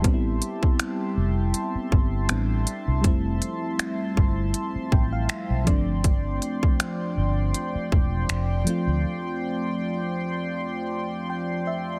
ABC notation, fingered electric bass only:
X:1
M:4/4
L:1/16
Q:"Swing 16ths" 1/4=80
K:Gmix
V:1 name="Fingered electric bass" clef=bass
A,,,2 z4 F,,,2 z2 G,,,2 A,,,2 z C,, | z6 G,,,2 z2 A,,,2 z B,,, z2 | z6 G,,,2 z2 E,,,2 F,,,2 z D,, | z16 |]